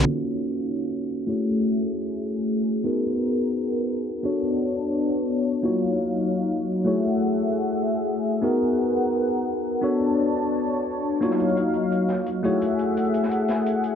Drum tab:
HH |----------------|----------------|----------------|----------------|
SD |----------------|----------------|----------------|----------------|

HH |----------------|----------------|----------------|----------------|
SD |----------------|----------------|----------------|----------------|

HH |x-xxx-x-x-x-x-x-|x-x-xxx-x-x-x-x-|
SD |-o--------o-----|-------o--o-----|